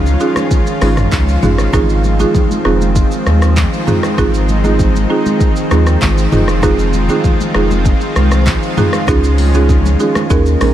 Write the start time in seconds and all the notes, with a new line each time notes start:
Already playing: C#2 D#3 F3 G#3 C#4 F4
0.06 high conga, shaker
0.20 C#4 D#4 F4 G#4, shaker
0.36 cross-stick, high conga, shaker
0.51 kick, shaker
0.67 shaker
0.81 G#1 C#4 D#4 F4 G#4, cross-stick, open hi-hat, high conga, shaker
0.97 cross-stick, mid tom, shaker
1.12 C#2, kick, clap, high conga, shaker
1.28 shaker
1.43 G#1 C#4 D#4 F4 G#4, mid tom, high conga, low conga, shaker
1.58 cross-stick, shaker
1.72 G#1 D#3 G#3 C4 D#4 F4 G#4, kick, cross-stick, low conga, shaker
1.89 shaker
2.04 high conga, shaker
2.19 C4 D#4 F4 G#4, high conga, shaker
2.35 kick, low conga, shaker
2.51 high conga, shaker
2.65 F1 C4 D#4 F4 G#4, cross-stick
2.81 high conga, shaker
2.96 kick, shaker
3.11 shaker
3.26 D#2, cross-stick, high conga, shaker
3.42 cross-stick, shaker
3.56 kick, clap, high conga, shaker
3.73 shaker
3.87 C4 D#4 F4 G#4, mid tom, high conga, low conga, shaker
4.03 cross-stick, shaker
4.17 G#1 C4 D#4 F4 G#4, kick, cross-stick, low conga, shaker
4.34 shaker
4.49 high conga, shaker
4.64 C4 D#4 F4 G#4, high conga, shaker
4.79 kick, low conga, shaker
4.96 high conga, shaker
5.10 C4 D#4 F4 G#4
5.26 high conga, shaker
5.40 kick, shaker
5.56 shaker
5.71 D#2 C4 D#4 F4 G#4, cross-stick, high conga, shaker
5.87 cross-stick, shaker
6.01 G#1, kick, clap, high conga, shaker
6.18 shaker
6.32 F1 G#3 C4 D#4 F4 G#4, mid tom, high conga, low conga, shaker
6.48 cross-stick, shaker
6.62 C4 D#4 F4 G#4, kick, cross-stick, low conga, shaker
6.79 shaker
6.93 high conga, shaker
7.09 C4 D#4 F4 G#4, high conga, shaker
7.24 kick, low conga, shaker
7.40 high conga, shaker
7.54 F1 C4 D#4 F4 G#4, cross-stick
7.71 high conga, shaker
7.85 kick, shaker
8.01 shaker
8.16 C2, cross-stick, high conga, shaker
8.31 cross-stick, shaker
8.46 kick, clap, high conga, shaker
8.63 shaker
8.77 C4 D#4 F4 G#4, mid tom, high conga, low conga, shaker
8.93 cross-stick, shaker
9.07 C#2 F3 C#4 D#4 F4 G#4, kick, cross-stick, low conga, shaker
9.24 shaker
9.38 open hi-hat, high conga, shaker
9.54 C#4 D#4 F4 G#4, high conga, shaker
9.69 kick, low conga, shaker
9.85 high conga, shaker
10.00 C#4 D#4 F4 G#4, shaker
10.15 cross-stick, high conga, shaker
10.30 D#2 C#3 D#3 A#3 C#4 D#4 G#4 A#4, kick, shaker
10.46 shaker
10.61 A#1 C#4 D#4 G#4 A#4, cross-stick, open hi-hat, high conga, shaker